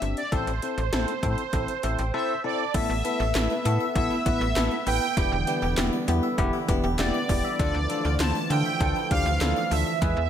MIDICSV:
0, 0, Header, 1, 7, 480
1, 0, Start_track
1, 0, Key_signature, 0, "minor"
1, 0, Tempo, 606061
1, 254, Time_signature, 4, 2, 24, 8
1, 8154, End_track
2, 0, Start_track
2, 0, Title_t, "Analog polysynth"
2, 0, Program_c, 0, 90
2, 0, Note_on_c, 0, 76, 96
2, 134, Note_on_c, 0, 74, 85
2, 145, Note_off_c, 0, 76, 0
2, 253, Note_on_c, 0, 72, 100
2, 257, Note_off_c, 0, 74, 0
2, 1696, Note_on_c, 0, 76, 91
2, 1902, Note_off_c, 0, 72, 0
2, 1918, Note_off_c, 0, 76, 0
2, 1938, Note_on_c, 0, 74, 81
2, 2178, Note_on_c, 0, 76, 115
2, 2183, Note_off_c, 0, 74, 0
2, 3127, Note_off_c, 0, 76, 0
2, 3137, Note_on_c, 0, 76, 101
2, 3368, Note_off_c, 0, 76, 0
2, 3377, Note_on_c, 0, 76, 110
2, 3857, Note_on_c, 0, 79, 108
2, 3870, Note_off_c, 0, 76, 0
2, 4544, Note_off_c, 0, 79, 0
2, 5539, Note_on_c, 0, 74, 98
2, 6007, Note_off_c, 0, 74, 0
2, 6017, Note_on_c, 0, 74, 115
2, 6464, Note_off_c, 0, 74, 0
2, 6497, Note_on_c, 0, 81, 112
2, 6735, Note_on_c, 0, 79, 113
2, 6743, Note_off_c, 0, 81, 0
2, 7216, Note_on_c, 0, 77, 109
2, 7229, Note_off_c, 0, 79, 0
2, 7695, Note_on_c, 0, 76, 108
2, 7709, Note_off_c, 0, 77, 0
2, 8154, Note_off_c, 0, 76, 0
2, 8154, End_track
3, 0, Start_track
3, 0, Title_t, "Harpsichord"
3, 0, Program_c, 1, 6
3, 2174, Note_on_c, 1, 57, 94
3, 2285, Note_off_c, 1, 57, 0
3, 2414, Note_on_c, 1, 59, 84
3, 2525, Note_off_c, 1, 59, 0
3, 2534, Note_on_c, 1, 69, 83
3, 2645, Note_off_c, 1, 69, 0
3, 2654, Note_on_c, 1, 64, 88
3, 2765, Note_off_c, 1, 64, 0
3, 2773, Note_on_c, 1, 71, 87
3, 2884, Note_off_c, 1, 71, 0
3, 2893, Note_on_c, 1, 69, 87
3, 3004, Note_off_c, 1, 69, 0
3, 3013, Note_on_c, 1, 76, 86
3, 3124, Note_off_c, 1, 76, 0
3, 3252, Note_on_c, 1, 64, 79
3, 3364, Note_off_c, 1, 64, 0
3, 3373, Note_on_c, 1, 59, 80
3, 3484, Note_off_c, 1, 59, 0
3, 3493, Note_on_c, 1, 69, 82
3, 3604, Note_off_c, 1, 69, 0
3, 3612, Note_on_c, 1, 64, 89
3, 3724, Note_off_c, 1, 64, 0
3, 3733, Note_on_c, 1, 71, 84
3, 3844, Note_off_c, 1, 71, 0
3, 3852, Note_on_c, 1, 69, 85
3, 3964, Note_off_c, 1, 69, 0
3, 3973, Note_on_c, 1, 76, 81
3, 4084, Note_off_c, 1, 76, 0
3, 4093, Note_on_c, 1, 55, 94
3, 4204, Note_off_c, 1, 55, 0
3, 4334, Note_on_c, 1, 62, 82
3, 4445, Note_off_c, 1, 62, 0
3, 4453, Note_on_c, 1, 67, 81
3, 4564, Note_off_c, 1, 67, 0
3, 4574, Note_on_c, 1, 64, 89
3, 4685, Note_off_c, 1, 64, 0
3, 4695, Note_on_c, 1, 74, 82
3, 4805, Note_off_c, 1, 74, 0
3, 4815, Note_on_c, 1, 67, 86
3, 4925, Note_off_c, 1, 67, 0
3, 4935, Note_on_c, 1, 76, 86
3, 5045, Note_off_c, 1, 76, 0
3, 5174, Note_on_c, 1, 64, 75
3, 5285, Note_off_c, 1, 64, 0
3, 5295, Note_on_c, 1, 62, 83
3, 5405, Note_off_c, 1, 62, 0
3, 5415, Note_on_c, 1, 67, 80
3, 5525, Note_off_c, 1, 67, 0
3, 5534, Note_on_c, 1, 64, 93
3, 5645, Note_off_c, 1, 64, 0
3, 5655, Note_on_c, 1, 74, 81
3, 5765, Note_off_c, 1, 74, 0
3, 5775, Note_on_c, 1, 67, 84
3, 5885, Note_off_c, 1, 67, 0
3, 5895, Note_on_c, 1, 76, 80
3, 6005, Note_off_c, 1, 76, 0
3, 6014, Note_on_c, 1, 53, 99
3, 6125, Note_off_c, 1, 53, 0
3, 6255, Note_on_c, 1, 62, 84
3, 6365, Note_off_c, 1, 62, 0
3, 6375, Note_on_c, 1, 65, 84
3, 6485, Note_off_c, 1, 65, 0
3, 6495, Note_on_c, 1, 64, 90
3, 6605, Note_off_c, 1, 64, 0
3, 6615, Note_on_c, 1, 74, 86
3, 6726, Note_off_c, 1, 74, 0
3, 6736, Note_on_c, 1, 65, 86
3, 6846, Note_off_c, 1, 65, 0
3, 6855, Note_on_c, 1, 76, 88
3, 6966, Note_off_c, 1, 76, 0
3, 7096, Note_on_c, 1, 64, 80
3, 7206, Note_off_c, 1, 64, 0
3, 7216, Note_on_c, 1, 62, 80
3, 7326, Note_off_c, 1, 62, 0
3, 7336, Note_on_c, 1, 65, 79
3, 7446, Note_off_c, 1, 65, 0
3, 7456, Note_on_c, 1, 64, 90
3, 7566, Note_off_c, 1, 64, 0
3, 7575, Note_on_c, 1, 74, 82
3, 7685, Note_off_c, 1, 74, 0
3, 7694, Note_on_c, 1, 65, 87
3, 7805, Note_off_c, 1, 65, 0
3, 7815, Note_on_c, 1, 76, 80
3, 7925, Note_off_c, 1, 76, 0
3, 7933, Note_on_c, 1, 56, 94
3, 8044, Note_off_c, 1, 56, 0
3, 8154, End_track
4, 0, Start_track
4, 0, Title_t, "Tine electric piano"
4, 0, Program_c, 2, 4
4, 13, Note_on_c, 2, 60, 74
4, 13, Note_on_c, 2, 62, 68
4, 14, Note_on_c, 2, 67, 81
4, 161, Note_off_c, 2, 60, 0
4, 161, Note_off_c, 2, 62, 0
4, 162, Note_off_c, 2, 67, 0
4, 252, Note_on_c, 2, 60, 100
4, 253, Note_on_c, 2, 64, 89
4, 253, Note_on_c, 2, 69, 103
4, 401, Note_off_c, 2, 60, 0
4, 401, Note_off_c, 2, 64, 0
4, 401, Note_off_c, 2, 69, 0
4, 494, Note_on_c, 2, 64, 66
4, 494, Note_on_c, 2, 69, 81
4, 495, Note_on_c, 2, 60, 72
4, 642, Note_off_c, 2, 60, 0
4, 642, Note_off_c, 2, 64, 0
4, 642, Note_off_c, 2, 69, 0
4, 734, Note_on_c, 2, 64, 88
4, 734, Note_on_c, 2, 69, 102
4, 735, Note_on_c, 2, 60, 90
4, 882, Note_off_c, 2, 60, 0
4, 882, Note_off_c, 2, 64, 0
4, 882, Note_off_c, 2, 69, 0
4, 973, Note_on_c, 2, 60, 88
4, 973, Note_on_c, 2, 64, 82
4, 973, Note_on_c, 2, 69, 93
4, 1121, Note_off_c, 2, 60, 0
4, 1121, Note_off_c, 2, 64, 0
4, 1121, Note_off_c, 2, 69, 0
4, 1214, Note_on_c, 2, 60, 87
4, 1214, Note_on_c, 2, 64, 79
4, 1214, Note_on_c, 2, 69, 97
4, 1361, Note_off_c, 2, 60, 0
4, 1362, Note_off_c, 2, 64, 0
4, 1362, Note_off_c, 2, 69, 0
4, 1452, Note_on_c, 2, 64, 79
4, 1452, Note_on_c, 2, 69, 98
4, 1453, Note_on_c, 2, 60, 87
4, 1453, Note_on_c, 2, 76, 71
4, 1565, Note_off_c, 2, 76, 0
4, 1574, Note_on_c, 2, 79, 69
4, 1601, Note_off_c, 2, 60, 0
4, 1601, Note_off_c, 2, 64, 0
4, 1601, Note_off_c, 2, 69, 0
4, 1685, Note_off_c, 2, 79, 0
4, 1694, Note_on_c, 2, 60, 111
4, 1694, Note_on_c, 2, 64, 101
4, 1694, Note_on_c, 2, 81, 72
4, 1695, Note_on_c, 2, 69, 118
4, 1842, Note_off_c, 2, 60, 0
4, 1842, Note_off_c, 2, 64, 0
4, 1842, Note_off_c, 2, 69, 0
4, 1917, Note_off_c, 2, 81, 0
4, 1934, Note_on_c, 2, 60, 90
4, 1934, Note_on_c, 2, 64, 81
4, 1934, Note_on_c, 2, 69, 99
4, 1934, Note_on_c, 2, 81, 72
4, 2082, Note_off_c, 2, 60, 0
4, 2082, Note_off_c, 2, 64, 0
4, 2082, Note_off_c, 2, 69, 0
4, 2157, Note_off_c, 2, 81, 0
4, 2174, Note_on_c, 2, 59, 99
4, 2174, Note_on_c, 2, 64, 90
4, 2174, Note_on_c, 2, 69, 111
4, 2322, Note_off_c, 2, 59, 0
4, 2322, Note_off_c, 2, 64, 0
4, 2322, Note_off_c, 2, 69, 0
4, 2412, Note_on_c, 2, 69, 85
4, 2413, Note_on_c, 2, 59, 76
4, 2413, Note_on_c, 2, 64, 70
4, 2561, Note_off_c, 2, 59, 0
4, 2561, Note_off_c, 2, 64, 0
4, 2561, Note_off_c, 2, 69, 0
4, 2654, Note_on_c, 2, 59, 76
4, 2654, Note_on_c, 2, 64, 72
4, 2654, Note_on_c, 2, 69, 86
4, 2802, Note_off_c, 2, 59, 0
4, 2802, Note_off_c, 2, 64, 0
4, 2802, Note_off_c, 2, 69, 0
4, 2895, Note_on_c, 2, 59, 91
4, 2895, Note_on_c, 2, 69, 104
4, 2896, Note_on_c, 2, 64, 85
4, 3042, Note_off_c, 2, 59, 0
4, 3042, Note_off_c, 2, 69, 0
4, 3043, Note_off_c, 2, 64, 0
4, 3134, Note_on_c, 2, 59, 101
4, 3135, Note_on_c, 2, 64, 92
4, 3135, Note_on_c, 2, 69, 110
4, 3282, Note_off_c, 2, 59, 0
4, 3282, Note_off_c, 2, 64, 0
4, 3282, Note_off_c, 2, 69, 0
4, 3374, Note_on_c, 2, 64, 74
4, 3374, Note_on_c, 2, 71, 90
4, 3375, Note_on_c, 2, 59, 79
4, 3522, Note_off_c, 2, 59, 0
4, 3522, Note_off_c, 2, 64, 0
4, 3522, Note_off_c, 2, 71, 0
4, 3614, Note_on_c, 2, 59, 102
4, 3614, Note_on_c, 2, 64, 91
4, 3614, Note_on_c, 2, 69, 104
4, 3762, Note_off_c, 2, 59, 0
4, 3762, Note_off_c, 2, 64, 0
4, 3762, Note_off_c, 2, 69, 0
4, 3854, Note_on_c, 2, 59, 81
4, 3854, Note_on_c, 2, 64, 73
4, 3854, Note_on_c, 2, 71, 88
4, 4002, Note_off_c, 2, 59, 0
4, 4002, Note_off_c, 2, 64, 0
4, 4002, Note_off_c, 2, 71, 0
4, 4094, Note_on_c, 2, 59, 99
4, 4094, Note_on_c, 2, 64, 95
4, 4094, Note_on_c, 2, 67, 110
4, 4242, Note_off_c, 2, 59, 0
4, 4242, Note_off_c, 2, 64, 0
4, 4242, Note_off_c, 2, 67, 0
4, 4335, Note_on_c, 2, 59, 74
4, 4335, Note_on_c, 2, 64, 70
4, 4335, Note_on_c, 2, 67, 84
4, 4482, Note_off_c, 2, 59, 0
4, 4482, Note_off_c, 2, 64, 0
4, 4482, Note_off_c, 2, 67, 0
4, 4572, Note_on_c, 2, 67, 102
4, 4573, Note_on_c, 2, 59, 91
4, 4574, Note_on_c, 2, 64, 86
4, 4721, Note_off_c, 2, 59, 0
4, 4721, Note_off_c, 2, 67, 0
4, 4722, Note_off_c, 2, 64, 0
4, 4815, Note_on_c, 2, 59, 93
4, 4815, Note_on_c, 2, 64, 87
4, 4815, Note_on_c, 2, 67, 101
4, 4962, Note_off_c, 2, 59, 0
4, 4962, Note_off_c, 2, 64, 0
4, 4962, Note_off_c, 2, 67, 0
4, 5054, Note_on_c, 2, 64, 108
4, 5054, Note_on_c, 2, 67, 127
4, 5055, Note_on_c, 2, 59, 123
4, 5202, Note_off_c, 2, 59, 0
4, 5202, Note_off_c, 2, 64, 0
4, 5202, Note_off_c, 2, 67, 0
4, 5294, Note_on_c, 2, 59, 97
4, 5294, Note_on_c, 2, 64, 84
4, 5294, Note_on_c, 2, 67, 106
4, 5442, Note_off_c, 2, 59, 0
4, 5442, Note_off_c, 2, 64, 0
4, 5442, Note_off_c, 2, 67, 0
4, 5534, Note_on_c, 2, 59, 100
4, 5534, Note_on_c, 2, 64, 91
4, 5534, Note_on_c, 2, 67, 107
4, 5682, Note_off_c, 2, 59, 0
4, 5682, Note_off_c, 2, 64, 0
4, 5682, Note_off_c, 2, 67, 0
4, 5775, Note_on_c, 2, 59, 81
4, 5775, Note_on_c, 2, 64, 74
4, 5775, Note_on_c, 2, 67, 88
4, 5922, Note_off_c, 2, 59, 0
4, 5922, Note_off_c, 2, 64, 0
4, 5922, Note_off_c, 2, 67, 0
4, 6013, Note_on_c, 2, 65, 94
4, 6014, Note_on_c, 2, 62, 107
4, 6014, Note_on_c, 2, 69, 113
4, 6161, Note_off_c, 2, 62, 0
4, 6161, Note_off_c, 2, 65, 0
4, 6162, Note_off_c, 2, 69, 0
4, 6253, Note_on_c, 2, 69, 86
4, 6254, Note_on_c, 2, 62, 79
4, 6254, Note_on_c, 2, 65, 71
4, 6401, Note_off_c, 2, 69, 0
4, 6402, Note_off_c, 2, 62, 0
4, 6402, Note_off_c, 2, 65, 0
4, 6496, Note_on_c, 2, 62, 76
4, 6496, Note_on_c, 2, 65, 71
4, 6496, Note_on_c, 2, 72, 85
4, 6642, Note_off_c, 2, 62, 0
4, 6642, Note_off_c, 2, 72, 0
4, 6643, Note_off_c, 2, 65, 0
4, 6734, Note_on_c, 2, 62, 78
4, 6734, Note_on_c, 2, 65, 72
4, 6734, Note_on_c, 2, 69, 88
4, 6882, Note_off_c, 2, 62, 0
4, 6882, Note_off_c, 2, 65, 0
4, 6882, Note_off_c, 2, 69, 0
4, 6973, Note_on_c, 2, 62, 100
4, 6973, Note_on_c, 2, 65, 92
4, 6973, Note_on_c, 2, 69, 112
4, 7121, Note_off_c, 2, 62, 0
4, 7121, Note_off_c, 2, 65, 0
4, 7121, Note_off_c, 2, 69, 0
4, 7212, Note_on_c, 2, 62, 78
4, 7212, Note_on_c, 2, 65, 73
4, 7212, Note_on_c, 2, 67, 87
4, 7361, Note_off_c, 2, 62, 0
4, 7361, Note_off_c, 2, 65, 0
4, 7361, Note_off_c, 2, 67, 0
4, 7453, Note_on_c, 2, 65, 89
4, 7453, Note_on_c, 2, 69, 111
4, 7454, Note_on_c, 2, 62, 99
4, 7601, Note_off_c, 2, 62, 0
4, 7601, Note_off_c, 2, 65, 0
4, 7601, Note_off_c, 2, 69, 0
4, 7693, Note_on_c, 2, 65, 74
4, 7694, Note_on_c, 2, 62, 77
4, 7694, Note_on_c, 2, 69, 87
4, 7841, Note_off_c, 2, 65, 0
4, 7842, Note_off_c, 2, 62, 0
4, 7842, Note_off_c, 2, 69, 0
4, 7933, Note_on_c, 2, 64, 104
4, 7934, Note_on_c, 2, 68, 94
4, 7934, Note_on_c, 2, 71, 113
4, 8081, Note_off_c, 2, 64, 0
4, 8082, Note_off_c, 2, 68, 0
4, 8082, Note_off_c, 2, 71, 0
4, 8154, End_track
5, 0, Start_track
5, 0, Title_t, "Analog synth pad"
5, 0, Program_c, 3, 89
5, 2171, Note_on_c, 3, 57, 78
5, 2172, Note_on_c, 3, 59, 70
5, 4073, Note_off_c, 3, 57, 0
5, 4074, Note_off_c, 3, 59, 0
5, 4093, Note_on_c, 3, 52, 71
5, 4094, Note_on_c, 3, 50, 77
5, 4094, Note_on_c, 3, 55, 69
5, 4095, Note_on_c, 3, 59, 73
5, 5995, Note_off_c, 3, 55, 0
5, 5995, Note_off_c, 3, 59, 0
5, 6017, Note_on_c, 3, 53, 69
5, 6018, Note_on_c, 3, 57, 74
5, 7902, Note_off_c, 3, 50, 0
5, 7916, Note_off_c, 3, 53, 0
5, 7917, Note_off_c, 3, 57, 0
5, 7934, Note_on_c, 3, 56, 72
5, 7934, Note_on_c, 3, 59, 84
5, 8154, Note_off_c, 3, 52, 0
5, 8154, Note_off_c, 3, 56, 0
5, 8154, Note_off_c, 3, 59, 0
5, 8154, End_track
6, 0, Start_track
6, 0, Title_t, "FM bass"
6, 0, Program_c, 4, 39
6, 14, Note_on_c, 4, 31, 93
6, 115, Note_off_c, 4, 31, 0
6, 254, Note_on_c, 4, 33, 109
6, 355, Note_off_c, 4, 33, 0
6, 374, Note_on_c, 4, 33, 99
6, 475, Note_off_c, 4, 33, 0
6, 615, Note_on_c, 4, 33, 103
6, 715, Note_off_c, 4, 33, 0
6, 734, Note_on_c, 4, 33, 91
6, 835, Note_off_c, 4, 33, 0
6, 972, Note_on_c, 4, 45, 104
6, 1074, Note_off_c, 4, 45, 0
6, 1212, Note_on_c, 4, 33, 108
6, 1314, Note_off_c, 4, 33, 0
6, 1454, Note_on_c, 4, 33, 106
6, 1555, Note_off_c, 4, 33, 0
6, 1575, Note_on_c, 4, 33, 100
6, 1676, Note_off_c, 4, 33, 0
6, 2173, Note_on_c, 4, 33, 113
6, 2274, Note_off_c, 4, 33, 0
6, 2293, Note_on_c, 4, 33, 106
6, 2395, Note_off_c, 4, 33, 0
6, 2533, Note_on_c, 4, 33, 105
6, 2634, Note_off_c, 4, 33, 0
6, 2653, Note_on_c, 4, 33, 106
6, 2754, Note_off_c, 4, 33, 0
6, 2893, Note_on_c, 4, 45, 107
6, 2994, Note_off_c, 4, 45, 0
6, 3132, Note_on_c, 4, 33, 105
6, 3234, Note_off_c, 4, 33, 0
6, 3373, Note_on_c, 4, 33, 99
6, 3475, Note_off_c, 4, 33, 0
6, 3493, Note_on_c, 4, 33, 97
6, 3595, Note_off_c, 4, 33, 0
6, 3613, Note_on_c, 4, 33, 104
6, 3715, Note_off_c, 4, 33, 0
6, 3854, Note_on_c, 4, 33, 95
6, 3955, Note_off_c, 4, 33, 0
6, 4094, Note_on_c, 4, 28, 113
6, 4195, Note_off_c, 4, 28, 0
6, 4213, Note_on_c, 4, 28, 106
6, 4314, Note_off_c, 4, 28, 0
6, 4453, Note_on_c, 4, 28, 101
6, 4555, Note_off_c, 4, 28, 0
6, 4574, Note_on_c, 4, 28, 102
6, 4675, Note_off_c, 4, 28, 0
6, 4815, Note_on_c, 4, 40, 105
6, 4916, Note_off_c, 4, 40, 0
6, 5053, Note_on_c, 4, 28, 108
6, 5155, Note_off_c, 4, 28, 0
6, 5294, Note_on_c, 4, 28, 102
6, 5395, Note_off_c, 4, 28, 0
6, 5415, Note_on_c, 4, 28, 95
6, 5516, Note_off_c, 4, 28, 0
6, 5534, Note_on_c, 4, 28, 110
6, 5635, Note_off_c, 4, 28, 0
6, 5775, Note_on_c, 4, 28, 104
6, 5876, Note_off_c, 4, 28, 0
6, 6014, Note_on_c, 4, 38, 120
6, 6115, Note_off_c, 4, 38, 0
6, 6132, Note_on_c, 4, 38, 104
6, 6234, Note_off_c, 4, 38, 0
6, 6373, Note_on_c, 4, 38, 101
6, 6475, Note_off_c, 4, 38, 0
6, 6493, Note_on_c, 4, 38, 98
6, 6595, Note_off_c, 4, 38, 0
6, 6733, Note_on_c, 4, 50, 102
6, 6835, Note_off_c, 4, 50, 0
6, 6973, Note_on_c, 4, 38, 116
6, 7074, Note_off_c, 4, 38, 0
6, 7214, Note_on_c, 4, 38, 103
6, 7315, Note_off_c, 4, 38, 0
6, 7331, Note_on_c, 4, 38, 94
6, 7434, Note_off_c, 4, 38, 0
6, 7451, Note_on_c, 4, 38, 106
6, 7554, Note_off_c, 4, 38, 0
6, 7691, Note_on_c, 4, 38, 100
6, 7794, Note_off_c, 4, 38, 0
6, 7934, Note_on_c, 4, 40, 115
6, 8035, Note_off_c, 4, 40, 0
6, 8052, Note_on_c, 4, 40, 99
6, 8154, Note_off_c, 4, 40, 0
6, 8154, End_track
7, 0, Start_track
7, 0, Title_t, "Drums"
7, 15, Note_on_c, 9, 42, 74
7, 94, Note_off_c, 9, 42, 0
7, 135, Note_on_c, 9, 42, 55
7, 214, Note_off_c, 9, 42, 0
7, 254, Note_on_c, 9, 36, 113
7, 255, Note_on_c, 9, 42, 81
7, 333, Note_off_c, 9, 36, 0
7, 334, Note_off_c, 9, 42, 0
7, 375, Note_on_c, 9, 42, 52
7, 454, Note_off_c, 9, 42, 0
7, 494, Note_on_c, 9, 42, 68
7, 574, Note_off_c, 9, 42, 0
7, 616, Note_on_c, 9, 42, 51
7, 695, Note_off_c, 9, 42, 0
7, 734, Note_on_c, 9, 38, 111
7, 735, Note_on_c, 9, 42, 73
7, 813, Note_off_c, 9, 38, 0
7, 814, Note_off_c, 9, 42, 0
7, 855, Note_on_c, 9, 42, 57
7, 934, Note_off_c, 9, 42, 0
7, 973, Note_on_c, 9, 36, 97
7, 975, Note_on_c, 9, 42, 83
7, 1052, Note_off_c, 9, 36, 0
7, 1054, Note_off_c, 9, 42, 0
7, 1092, Note_on_c, 9, 42, 49
7, 1171, Note_off_c, 9, 42, 0
7, 1211, Note_on_c, 9, 42, 74
7, 1212, Note_on_c, 9, 36, 90
7, 1290, Note_off_c, 9, 42, 0
7, 1291, Note_off_c, 9, 36, 0
7, 1333, Note_on_c, 9, 42, 56
7, 1412, Note_off_c, 9, 42, 0
7, 1451, Note_on_c, 9, 42, 82
7, 1531, Note_off_c, 9, 42, 0
7, 1573, Note_on_c, 9, 42, 59
7, 1652, Note_off_c, 9, 42, 0
7, 2173, Note_on_c, 9, 36, 121
7, 2173, Note_on_c, 9, 42, 90
7, 2173, Note_on_c, 9, 49, 100
7, 2252, Note_off_c, 9, 36, 0
7, 2252, Note_off_c, 9, 42, 0
7, 2252, Note_off_c, 9, 49, 0
7, 2414, Note_on_c, 9, 42, 73
7, 2493, Note_off_c, 9, 42, 0
7, 2653, Note_on_c, 9, 38, 112
7, 2653, Note_on_c, 9, 39, 94
7, 2654, Note_on_c, 9, 42, 78
7, 2732, Note_off_c, 9, 38, 0
7, 2732, Note_off_c, 9, 39, 0
7, 2733, Note_off_c, 9, 42, 0
7, 2895, Note_on_c, 9, 42, 86
7, 2974, Note_off_c, 9, 42, 0
7, 3132, Note_on_c, 9, 36, 98
7, 3133, Note_on_c, 9, 42, 77
7, 3211, Note_off_c, 9, 36, 0
7, 3212, Note_off_c, 9, 42, 0
7, 3373, Note_on_c, 9, 36, 90
7, 3374, Note_on_c, 9, 42, 89
7, 3452, Note_off_c, 9, 36, 0
7, 3453, Note_off_c, 9, 42, 0
7, 3614, Note_on_c, 9, 38, 125
7, 3614, Note_on_c, 9, 39, 100
7, 3614, Note_on_c, 9, 42, 73
7, 3693, Note_off_c, 9, 42, 0
7, 3694, Note_off_c, 9, 38, 0
7, 3694, Note_off_c, 9, 39, 0
7, 3855, Note_on_c, 9, 46, 74
7, 3934, Note_off_c, 9, 46, 0
7, 4094, Note_on_c, 9, 36, 122
7, 4095, Note_on_c, 9, 42, 88
7, 4173, Note_off_c, 9, 36, 0
7, 4174, Note_off_c, 9, 42, 0
7, 4334, Note_on_c, 9, 42, 72
7, 4413, Note_off_c, 9, 42, 0
7, 4574, Note_on_c, 9, 38, 113
7, 4574, Note_on_c, 9, 39, 95
7, 4575, Note_on_c, 9, 42, 76
7, 4653, Note_off_c, 9, 38, 0
7, 4653, Note_off_c, 9, 39, 0
7, 4654, Note_off_c, 9, 42, 0
7, 4816, Note_on_c, 9, 42, 84
7, 4895, Note_off_c, 9, 42, 0
7, 5053, Note_on_c, 9, 36, 98
7, 5055, Note_on_c, 9, 42, 75
7, 5133, Note_off_c, 9, 36, 0
7, 5134, Note_off_c, 9, 42, 0
7, 5294, Note_on_c, 9, 36, 95
7, 5295, Note_on_c, 9, 42, 85
7, 5373, Note_off_c, 9, 36, 0
7, 5374, Note_off_c, 9, 42, 0
7, 5536, Note_on_c, 9, 38, 117
7, 5536, Note_on_c, 9, 39, 99
7, 5536, Note_on_c, 9, 42, 72
7, 5615, Note_off_c, 9, 42, 0
7, 5616, Note_off_c, 9, 38, 0
7, 5616, Note_off_c, 9, 39, 0
7, 5775, Note_on_c, 9, 36, 85
7, 5776, Note_on_c, 9, 46, 78
7, 5854, Note_off_c, 9, 36, 0
7, 5855, Note_off_c, 9, 46, 0
7, 6015, Note_on_c, 9, 36, 115
7, 6016, Note_on_c, 9, 42, 89
7, 6094, Note_off_c, 9, 36, 0
7, 6095, Note_off_c, 9, 42, 0
7, 6254, Note_on_c, 9, 42, 74
7, 6334, Note_off_c, 9, 42, 0
7, 6494, Note_on_c, 9, 38, 114
7, 6494, Note_on_c, 9, 39, 97
7, 6496, Note_on_c, 9, 42, 77
7, 6574, Note_off_c, 9, 38, 0
7, 6574, Note_off_c, 9, 39, 0
7, 6575, Note_off_c, 9, 42, 0
7, 6736, Note_on_c, 9, 42, 86
7, 6816, Note_off_c, 9, 42, 0
7, 6973, Note_on_c, 9, 36, 97
7, 6974, Note_on_c, 9, 42, 75
7, 7052, Note_off_c, 9, 36, 0
7, 7053, Note_off_c, 9, 42, 0
7, 7214, Note_on_c, 9, 36, 94
7, 7214, Note_on_c, 9, 42, 87
7, 7293, Note_off_c, 9, 36, 0
7, 7293, Note_off_c, 9, 42, 0
7, 7454, Note_on_c, 9, 42, 72
7, 7455, Note_on_c, 9, 38, 117
7, 7455, Note_on_c, 9, 39, 97
7, 7533, Note_off_c, 9, 42, 0
7, 7534, Note_off_c, 9, 38, 0
7, 7534, Note_off_c, 9, 39, 0
7, 7694, Note_on_c, 9, 46, 76
7, 7773, Note_off_c, 9, 46, 0
7, 7934, Note_on_c, 9, 36, 119
7, 7935, Note_on_c, 9, 42, 86
7, 8013, Note_off_c, 9, 36, 0
7, 8014, Note_off_c, 9, 42, 0
7, 8154, End_track
0, 0, End_of_file